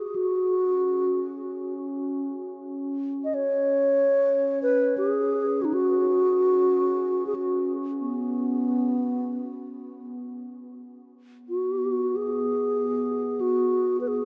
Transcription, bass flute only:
0.06 0.17 G#4 soft
0.16 1.74 F#4 medium
3.24 3.36 D#5 medium
3.34 4.61 C#5 medium
4.63 4.95 B4 medium
4.98 5.63 G#4 medium
5.62 5.75 D#4 medium
5.62 5.66 F#4 medium
5.73 7.26 F#4 medium
7.27 7.36 G#4 medium
7.35 7.72 F#4 medium
8.01 10.06 B3 medium
11.49 12.18 F#4 medium
12.16 13.42 G#4 medium
13.41 14.00 F#4 medium
14.01 14.09 B4 soft
14.08 14.25 G#4 medium

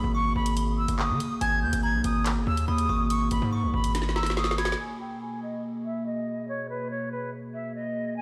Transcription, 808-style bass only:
0.04 0.34 G#1 loud
0.36 0.86 G#1 loud
0.88 1.11 G1 loud
1.09 1.20 D#3 loud
1.41 1.64 G#1 loud
1.62 1.72 D#2 loud
1.73 1.95 G#1 loud
1.94 2.04 B1 loud
2.04 2.38 G#1 loud
2.36 2.46 G1 loud
2.47 2.67 D#2 loud
2.68 2.88 D#2 loud
2.89 3.30 G#1 loud
3.31 3.42 G#1 loud
3.42 3.65 G#2 loud
3.63 3.73 B1 loud
3.74 4.75 G#1 loud

